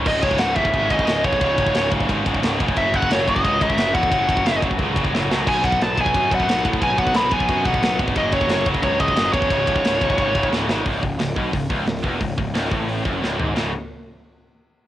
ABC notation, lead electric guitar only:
X:1
M:4/4
L:1/8
Q:1/4=178
K:F#dor
V:1 name="Lead electric guitar"
d c f e2 d2 c- | c3 z4 z | e f c d2 e2 f- | f3 z4 z |
g f a g2 f2 z | g f b g2 f2 z | d c2 z c d2 c- | c6 z2 |
z8 | z8 | z8 |]